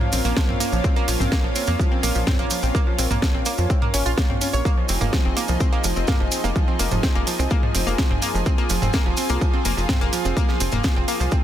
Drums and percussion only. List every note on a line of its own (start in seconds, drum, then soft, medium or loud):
0.01 mid tom medium
0.12 open hi-hat loud
0.12 maracas loud
0.25 maracas medium
0.37 kick loud
0.37 snare loud
0.37 maracas soft
0.49 mid tom medium
0.60 open hi-hat loud
0.60 maracas loud
0.73 maracas medium
0.84 kick loud
0.84 maracas soft
1.08 open hi-hat loud
1.08 maracas loud
1.20 mid tom medium
1.20 maracas medium
1.32 kick loud
1.32 snare loud
1.32 maracas soft
1.55 open hi-hat loud
1.55 maracas loud
1.67 maracas medium
1.79 kick loud
1.79 maracas soft
2.03 open hi-hat loud
2.03 maracas loud
2.15 maracas medium
2.27 kick loud
2.27 snare loud
2.27 mid tom medium
2.27 maracas soft
2.50 open hi-hat loud
2.50 maracas loud
2.63 maracas medium
2.75 kick loud
2.75 maracas soft
2.98 open hi-hat loud
2.98 maracas medium
3.11 mid tom medium
3.11 maracas medium
3.22 kick loud
3.22 snare loud
3.22 maracas soft
3.46 open hi-hat loud
3.46 maracas loud
3.58 maracas medium
3.70 kick loud
3.70 maracas soft
3.82 mid tom medium
3.94 open hi-hat loud
3.94 maracas loud
4.06 maracas medium
4.18 kick loud
4.18 snare loud
4.18 maracas soft
4.30 mid tom medium
4.41 open hi-hat loud
4.41 maracas medium
4.54 maracas medium
4.65 kick loud
4.65 maracas soft
4.89 open hi-hat loud
4.89 maracas loud
5.01 mid tom medium
5.01 maracas soft
5.13 kick loud
5.13 snare loud
5.13 maracas soft
5.37 open hi-hat loud
5.37 maracas medium
5.48 maracas medium
5.60 kick loud
5.60 maracas soft
5.84 open hi-hat loud
5.84 maracas medium
5.96 maracas medium
6.07 kick loud
6.07 snare loud
6.07 mid tom medium
6.07 maracas soft
6.32 open hi-hat loud
6.32 maracas loud
6.45 maracas medium
6.56 kick loud
6.56 maracas soft
6.79 open hi-hat loud
6.79 maracas loud
6.91 mid tom medium
6.91 maracas medium
7.03 kick loud
7.03 snare loud
7.03 maracas soft
7.27 open hi-hat loud
7.27 maracas medium
7.40 maracas medium
7.50 kick loud
7.50 maracas soft
7.63 mid tom medium
7.75 open hi-hat loud
7.75 maracas medium
7.88 maracas medium
7.98 kick loud
7.98 snare loud
7.98 maracas soft
8.10 mid tom medium
8.22 open hi-hat loud
8.22 maracas medium
8.35 maracas soft
8.46 kick loud
8.46 maracas soft
8.69 open hi-hat loud
8.69 maracas medium
8.82 mid tom medium
8.82 maracas medium
8.93 kick loud
8.93 snare loud
8.93 maracas soft
9.17 open hi-hat loud
9.17 maracas loud
9.29 maracas soft
9.41 kick loud
9.41 maracas soft
9.65 open hi-hat loud
9.65 maracas medium
9.78 maracas soft
9.89 kick loud
9.89 snare loud
9.89 mid tom medium
9.89 maracas soft
10.13 open hi-hat loud
10.13 maracas medium
10.25 maracas medium
10.37 kick loud
10.37 maracas soft
10.49 snare soft
10.60 open hi-hat loud
10.60 maracas loud
10.72 mid tom medium
10.72 maracas soft
10.84 kick loud
10.84 snare loud
10.84 maracas soft
11.08 open hi-hat loud
11.08 maracas medium
11.21 maracas medium
11.31 kick loud
11.31 maracas soft